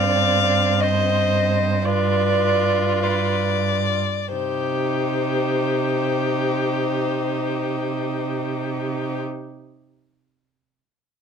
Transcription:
Already playing: G2 C4 D5 F5
0.80 C5 D#5
1.85 F4 B4 D5
3.03 B4 D5
4.32 C3 D#4 G4 C5

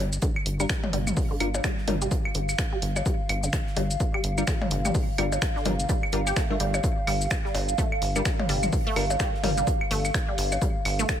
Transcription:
0.00 G1
0.13 closed hi-hat, cabasa
0.22 D3 F5, kick, closed hi-hat, cabasa
0.36 claves
0.46 G1, closed hi-hat
0.60 G3 D4 F4 A#4, cabasa, claves
0.69 finger snap, kick, snare, closed hi-hat, cabasa
0.84 mid tom, percussion blips
0.93 G1 G3, closed hi-hat
1.07 mid tom, cabasa, claves
1.17 kick, open hi-hat, cabasa
1.31 D3
1.40 G1 G3 D4 F4 A#4, closed hi-hat, claves
1.54 percussion blips, cabasa
1.64 G3, finger snap, kick, snare, closed hi-hat, cabasa
1.78 snare
1.87 G1 G3 D4 F4 A#4, closed hi-hat, mid tom, percussion blips
2.02 G3, closed hi-hat, cabasa
2.11 kick, closed hi-hat, cabasa
2.25 claves
2.34 G1 D3, closed hi-hat
2.49 snare, cabasa, claves
2.58 finger snap, kick, snare, closed hi-hat, cabasa
2.73 G3
2.82 G1, closed hi-hat
2.96 percussion blips, cabasa, claves
3.06 G3, kick, closed hi-hat, cabasa
3.29 G1, closed hi-hat, claves
3.43 D3, snare, cabasa
3.53 finger snap, kick, snare, closed hi-hat, cabasa
3.67 snare
3.77 G1 G3, closed hi-hat, percussion blips
3.91 closed hi-hat, cabasa
4.00 kick, closed hi-hat, cabasa
4.14 G3, claves
4.24 G1, closed hi-hat
4.38 G3 D4 F4 A#4, cabasa, claves
4.47 D3, finger snap, kick, snare, closed hi-hat, cabasa
4.62 mid tom, percussion blips
4.71 G1, closed hi-hat
4.85 G3, mid tom, cabasa, claves
4.95 kick, open hi-hat, cabasa
5.18 G1 G3 D4 F4 A#4, closed hi-hat, claves
5.32 percussion blips, cabasa
5.42 finger snap, kick, snare, closed hi-hat, cabasa
5.56 D3, snare
5.65 G1 G3 D4 F4 A#4, closed hi-hat, mid tom, percussion blips
5.80 closed hi-hat, cabasa
5.89 G3, kick, closed hi-hat, cabasa
6.03 claves
6.12 G1 G3 D4 F4 A#4, closed hi-hat
6.27 G4, snare, cabasa, claves
6.36 A3, finger snap, kick, snare, closed hi-hat, cabasa
6.50 G3 A3 D4 F4 A#4
6.60 G1 G3, closed hi-hat
6.74 percussion blips, cabasa, claves
6.84 kick, closed hi-hat, cabasa
7.07 G1 G3, closed hi-hat, open hi-hat, claves
7.21 snare, cabasa
7.30 finger snap, kick, snare, closed hi-hat, cabasa
7.45 G3, snare
7.55 G1, closed hi-hat, open hi-hat, percussion blips
7.69 closed hi-hat, cabasa
7.78 A3, kick, closed hi-hat, cabasa
7.92 claves
8.02 G1, closed hi-hat, open hi-hat
8.16 G3 D4 F4 A#4, cabasa, claves
8.25 finger snap, kick, snare, closed hi-hat, cabasa
8.39 mid tom, percussion blips
8.49 G1 G3, closed hi-hat, open hi-hat
8.63 mid tom, cabasa, claves
8.73 kick, open hi-hat, cabasa
8.87 A3
8.96 G1 G3 D4 F4 A#4, closed hi-hat, open hi-hat, claves
9.10 percussion blips, cabasa
9.19 G3, finger snap, kick, snare, closed hi-hat, cabasa
9.34 snare
9.43 G1 G3 D4 F4 A#4, closed hi-hat, mid tom, open hi-hat, percussion blips
9.58 G3, closed hi-hat, cabasa
9.67 kick, closed hi-hat, cabasa
9.81 claves
9.91 G1 A3, closed hi-hat, open hi-hat
10.04 snare, cabasa, claves
10.14 finger snap, kick, snare, closed hi-hat, cabasa
10.28 G3
10.38 G1, closed hi-hat, open hi-hat
10.52 percussion blips, cabasa, claves
10.62 G3, kick, closed hi-hat, cabasa
10.85 G1, closed hi-hat, open hi-hat, claves
10.99 A3, snare, cabasa
11.09 finger snap, kick, snare, closed hi-hat, cabasa

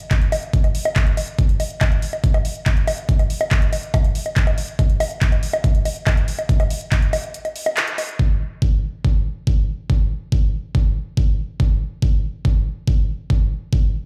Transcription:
0.00 closed hi-hat
0.11 kick, clap, closed hi-hat, high bongo
0.22 closed hi-hat
0.32 open hi-hat, high bongo
0.43 closed hi-hat
0.53 kick, closed hi-hat
0.64 closed hi-hat, high bongo
0.75 open hi-hat
0.85 closed hi-hat, high bongo
0.96 kick, clap, closed hi-hat
1.07 closed hi-hat
1.17 open hi-hat, high bongo
1.39 kick, closed hi-hat
1.49 closed hi-hat
1.60 open hi-hat, high bongo
1.70 closed hi-hat
1.81 kick, clap, closed hi-hat, high bongo
1.92 closed hi-hat
2.02 open hi-hat
2.13 closed hi-hat, high bongo
2.24 kick, closed hi-hat
2.34 closed hi-hat, high bongo
2.45 open hi-hat
2.56 closed hi-hat
2.66 kick, clap, closed hi-hat, high bongo
2.77 closed hi-hat
2.87 open hi-hat, high bongo
2.98 closed hi-hat
3.09 kick, closed hi-hat
3.19 closed hi-hat, high bongo
3.30 open hi-hat
3.41 closed hi-hat, high bongo
3.51 kick, clap, closed hi-hat
3.62 closed hi-hat
3.73 open hi-hat, high bongo
3.83 closed hi-hat
3.94 kick, closed hi-hat, high bongo
4.04 closed hi-hat
4.15 open hi-hat
4.26 closed hi-hat, high bongo
4.36 kick, clap, closed hi-hat
4.47 closed hi-hat, high bongo
4.58 open hi-hat
4.68 closed hi-hat
4.79 kick, closed hi-hat, high bongo
4.90 closed hi-hat
5.00 open hi-hat, high bongo
5.11 closed hi-hat
5.22 kick, clap, closed hi-hat
5.32 closed hi-hat, high bongo
5.43 open hi-hat
5.53 closed hi-hat, high bongo
5.64 kick, closed hi-hat
5.75 closed hi-hat
5.85 open hi-hat, high bongo
5.96 closed hi-hat
6.07 kick, clap, closed hi-hat, high bongo
6.17 closed hi-hat
6.28 open hi-hat
6.39 closed hi-hat, high bongo
6.49 kick, closed hi-hat
6.60 closed hi-hat, high bongo
6.70 open hi-hat
6.81 closed hi-hat
6.92 kick, clap, closed hi-hat, high bongo
7.02 closed hi-hat
7.13 open hi-hat, high bongo
7.24 closed hi-hat
7.34 closed hi-hat
7.45 closed hi-hat, high bongo
7.56 open hi-hat
7.66 closed hi-hat, high bongo
7.77 clap, closed hi-hat
7.87 closed hi-hat
7.98 open hi-hat, high bongo
8.09 closed hi-hat
8.19 kick
8.62 kick
9.05 kick
9.47 kick
9.90 kick
10.32 kick
10.75 kick
11.17 kick
11.60 kick
12.02 kick
12.45 kick
12.88 kick
13.30 kick
13.73 kick

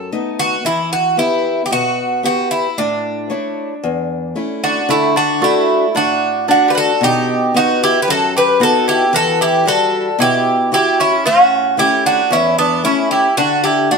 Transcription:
Already playing: F#2
0.12 A3 B3 D#4
0.39 F#4
0.65 E3 E4
0.93 F#4
1.17 B3 E4 G4
1.66 G4
1.71 B2 F#4
2.23 B3 E4 F#4 G4
2.51 E4
2.78 A2 D4
3.30 A3 E4 C#5
3.83 E2
4.36 A3 C#4 E4
4.64 D4 F#4
4.89 D3 A3 E4
5.16 D4 F#4
5.41 A3 D4 E4 F#4
5.95 A2 D4 F#4
6.48 A3 D4 F#4
6.68 G4 B4
6.75 F#4 A4
7.01 B2 D#4 G4
7.54 B3 D#4 F#4
7.84 E4 G4
8.02 G4 B4
8.08 F#2 F#4 A4
8.37 G4 B4
8.60 B3 D#4 F#4 A4
8.88 E4 G4
9.13 E3 F#4 A4
9.41 E4 G4
9.65 G3 E4 F#4 A4
10.19 B2 E4 G4
10.72 E4 F#4 G4
11.00 C#4 E4
11.25 A2 C#4 F#4
11.77 A3 C#4 E4 G4
12.06 D4 F#4
12.31 E2 C#4 E4
12.59 B3 D4
12.84 A3 C#4 E4
13.11 E4 G4
13.37 D3 D4 F#4
13.64 E4 G4
13.91 A3 D4 F#4

